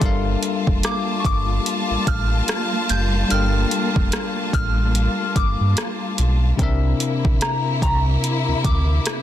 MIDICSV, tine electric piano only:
0, 0, Header, 1, 2, 480
1, 0, Start_track
1, 0, Tempo, 821918
1, 9, Time_signature, 4, 2, 24, 8
1, 5386, End_track
2, 0, Start_track
2, 0, Title_t, "Tine electric piano"
2, 0, Program_c, 0, 4
2, 0, Control_c, 0, 64, 127
2, 0, Note_on_c, 0, 55, 74
2, 0, Note_on_c, 0, 76, 53
2, 0, Note_on_c, 0, 84, 62
2, 6, Note_on_c, 0, 62, 72
2, 15, Note_on_c, 0, 69, 67
2, 17, Control_c, 0, 64, 0
2, 23, Note_on_c, 0, 70, 72
2, 32, Note_on_c, 0, 77, 83
2, 135, Control_c, 0, 64, 127
2, 139, Note_off_c, 0, 84, 0
2, 141, Note_off_c, 0, 76, 0
2, 1900, Note_off_c, 0, 55, 0
2, 1904, Note_off_c, 0, 62, 0
2, 1909, Note_off_c, 0, 69, 0
2, 1913, Note_off_c, 0, 70, 0
2, 1917, Note_off_c, 0, 77, 0
2, 1917, Note_on_c, 0, 55, 61
2, 1926, Note_on_c, 0, 62, 59
2, 1934, Note_on_c, 0, 69, 59
2, 1943, Note_on_c, 0, 70, 61
2, 1952, Note_on_c, 0, 79, 75
2, 3820, Note_off_c, 0, 55, 0
2, 3824, Note_off_c, 0, 62, 0
2, 3828, Note_off_c, 0, 69, 0
2, 3833, Note_off_c, 0, 70, 0
2, 3837, Note_off_c, 0, 79, 0
2, 3837, Note_on_c, 0, 48, 79
2, 3846, Note_on_c, 0, 60, 75
2, 3855, Note_on_c, 0, 62, 71
2, 3856, Control_c, 0, 64, 0
2, 3864, Note_on_c, 0, 70, 70
2, 3872, Note_on_c, 0, 76, 87
2, 3962, Control_c, 0, 64, 127
2, 5386, Note_off_c, 0, 48, 0
2, 5386, Note_off_c, 0, 60, 0
2, 5386, Note_off_c, 0, 62, 0
2, 5386, Note_off_c, 0, 70, 0
2, 5386, Note_off_c, 0, 76, 0
2, 5386, End_track
0, 0, End_of_file